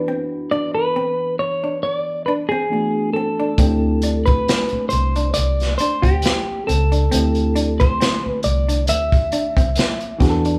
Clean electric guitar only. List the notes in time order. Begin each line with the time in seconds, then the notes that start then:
0.51 D5
0.75 B4
1.39 C#5
1.83 C#5
1.94 D5
2.26 B4
2.49 G#4
3.13 A4
4.26 B4
4.89 C5
5.34 D5
5.78 C5
6.02 G4
6.67 A4
7.80 C5
8.27 B4
8.44 D5
8.89 E5